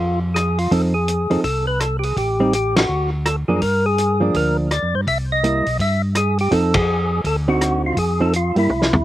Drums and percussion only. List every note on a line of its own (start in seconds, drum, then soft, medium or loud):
0.36 cross-stick medium
0.36 closed hi-hat medium
0.58 open hi-hat soft
0.71 kick soft
0.71 open hi-hat soft
1.08 closed hi-hat medium
1.30 open hi-hat soft
1.44 kick soft
1.44 open hi-hat soft
1.80 cross-stick medium
1.80 closed hi-hat medium
2.03 open hi-hat soft
2.17 kick soft
2.17 open hi-hat soft
2.53 closed hi-hat soft
2.76 snare medium
2.76 ride medium
3.26 cross-stick medium
3.26 closed hi-hat medium
3.62 kick soft
3.62 open hi-hat soft
3.98 closed hi-hat medium
4.34 kick soft
4.34 open hi-hat soft
4.71 cross-stick medium
4.71 closed hi-hat medium
5.07 kick soft
5.07 open hi-hat soft
5.44 closed hi-hat soft
5.66 open hi-hat soft
5.79 kick soft
5.79 open hi-hat soft
6.15 cross-stick medium
6.15 closed hi-hat medium
6.38 open hi-hat soft
6.52 kick soft
6.52 open hi-hat medium
6.74 kick medium
6.74 ride medium
7.24 kick soft
7.24 open hi-hat soft
7.61 cross-stick medium
7.61 closed hi-hat medium
7.97 kick soft
7.97 open hi-hat soft
8.33 closed hi-hat medium
8.56 open hi-hat soft
8.70 mid tom soft
8.82 snare medium
8.93 floor tom medium